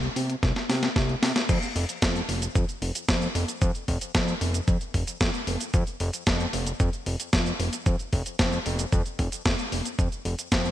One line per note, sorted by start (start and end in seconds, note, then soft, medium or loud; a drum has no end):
0.03 closed hi-hat soft
0.16 0.36 C3 medium
0.16 open hi-hat loud
0.30 closed hi-hat medium
0.43 0.53 C2 medium
0.43 kick loud
0.43 snare medium
0.43 closed hi-hat medium
0.56 snare medium
0.56 closed hi-hat soft
0.69 0.89 C3 medium
0.69 snare medium
0.69 open hi-hat loud
0.83 snare medium
0.83 closed hi-hat medium
0.96 1.15 C2 loud
0.96 kick loud
0.96 snare medium
0.96 closed hi-hat medium
1.09 closed hi-hat soft
1.22 1.32 C3 loud
1.22 snare loud
1.22 open hi-hat loud
1.36 snare medium
1.36 closed hi-hat medium
1.49 1.59 F2 loud
1.49 kick loud
1.49 closed hi-hat medium
1.49 crash loud
1.49 cabasa soft
1.63 closed hi-hat soft
1.63 cabasa soft
1.75 1.85 F1 loud
1.75 open hi-hat loud
1.89 closed hi-hat medium
1.89 cabasa medium
2.02 2.22 F2 medium
2.02 kick loud
2.02 snare loud
2.02 closed hi-hat medium
2.02 cabasa medium
2.16 closed hi-hat soft
2.16 cabasa soft
2.29 2.48 F1 medium
2.29 open hi-hat loud
2.42 closed hi-hat medium
2.42 cabasa medium
2.55 2.65 F2 loud
2.55 kick loud
2.55 closed hi-hat medium
2.55 cabasa medium
2.69 closed hi-hat soft
2.69 cabasa soft
2.82 2.92 F1 loud
2.82 open hi-hat loud
2.95 closed hi-hat medium
2.95 cabasa medium
3.09 3.28 F2 medium
3.09 kick loud
3.09 snare loud
3.09 closed hi-hat medium
3.09 cabasa soft
3.22 closed hi-hat soft
3.22 cabasa soft
3.35 3.45 F1 loud
3.35 open hi-hat loud
3.48 closed hi-hat medium
3.48 cabasa medium
3.62 3.71 F2 loud
3.62 kick loud
3.62 closed hi-hat medium
3.62 cabasa soft
3.75 closed hi-hat soft
3.75 cabasa soft
3.88 3.98 F1 loud
3.88 kick medium
3.88 open hi-hat loud
4.01 closed hi-hat medium
4.01 cabasa medium
4.15 4.34 F2 medium
4.15 kick loud
4.15 snare loud
4.15 closed hi-hat medium
4.15 cabasa soft
4.28 closed hi-hat soft
4.28 cabasa soft
4.41 4.61 F1 loud
4.41 open hi-hat loud
4.54 closed hi-hat medium
4.54 cabasa medium
4.68 4.77 F2 medium
4.68 kick loud
4.68 closed hi-hat medium
4.68 cabasa soft
4.81 closed hi-hat soft
4.81 cabasa soft
4.94 5.04 F1 medium
4.94 kick medium
4.94 open hi-hat loud
5.07 closed hi-hat medium
5.07 cabasa medium
5.21 5.31 F2 loud
5.21 kick loud
5.21 snare loud
5.21 closed hi-hat medium
5.21 cabasa soft
5.34 closed hi-hat soft
5.34 cabasa soft
5.47 5.57 F1 loud
5.47 open hi-hat loud
5.61 closed hi-hat medium
5.61 cabasa medium
5.74 5.84 F2 loud
5.74 kick loud
5.74 closed hi-hat medium
5.74 cabasa medium
5.87 closed hi-hat soft
5.87 cabasa soft
6.00 6.10 F1 loud
6.00 open hi-hat loud
6.13 closed hi-hat medium
6.13 cabasa medium
6.27 6.46 F2 medium
6.27 kick loud
6.27 snare loud
6.27 closed hi-hat medium
6.27 cabasa soft
6.40 closed hi-hat soft
6.40 cabasa soft
6.53 6.73 F1 medium
6.53 open hi-hat loud
6.67 closed hi-hat medium
6.67 cabasa medium
6.80 6.90 F2 loud
6.80 kick loud
6.80 closed hi-hat medium
6.80 cabasa soft
6.93 closed hi-hat soft
6.93 cabasa soft
7.06 7.16 F1 loud
7.06 open hi-hat loud
7.20 closed hi-hat medium
7.20 cabasa medium
7.33 7.52 F2 medium
7.33 kick loud
7.33 snare loud
7.33 closed hi-hat medium
7.33 cabasa soft
7.46 closed hi-hat soft
7.46 cabasa soft
7.60 7.69 F1 loud
7.60 open hi-hat loud
7.73 closed hi-hat medium
7.73 cabasa medium
7.86 7.96 F2 loud
7.86 kick loud
7.86 closed hi-hat medium
7.86 cabasa medium
7.99 closed hi-hat soft
7.99 cabasa soft
8.13 8.22 F1 loud
8.13 kick medium
8.13 open hi-hat loud
8.26 closed hi-hat medium
8.26 cabasa medium
8.39 8.59 F2 medium
8.39 kick loud
8.39 snare loud
8.39 closed hi-hat medium
8.39 cabasa soft
8.53 closed hi-hat soft
8.53 cabasa soft
8.66 8.85 F1 medium
8.66 open hi-hat loud
8.79 closed hi-hat medium
8.79 cabasa medium
8.92 9.02 F2 medium
8.92 kick loud
8.92 closed hi-hat medium
8.92 cabasa soft
9.06 closed hi-hat soft
9.06 cabasa soft
9.19 9.29 F1 medium
9.19 kick medium
9.19 open hi-hat loud
9.32 closed hi-hat medium
9.32 cabasa medium
9.46 9.55 F2 medium
9.46 kick loud
9.46 snare loud
9.46 closed hi-hat medium
9.46 cabasa soft
9.59 closed hi-hat soft
9.59 cabasa soft
9.72 9.82 F1 medium
9.72 open hi-hat loud
9.85 closed hi-hat medium
9.85 cabasa medium
9.99 10.08 F2 loud
9.99 kick loud
9.99 closed hi-hat medium
9.99 cabasa medium
10.12 closed hi-hat soft
10.12 cabasa soft
10.25 10.35 F1 loud
10.25 open hi-hat loud
10.39 closed hi-hat soft
10.39 cabasa medium
10.52 10.71 F2 medium
10.52 kick loud
10.52 snare loud
10.52 closed hi-hat medium
10.52 cabasa medium
10.65 closed hi-hat soft
10.65 cabasa soft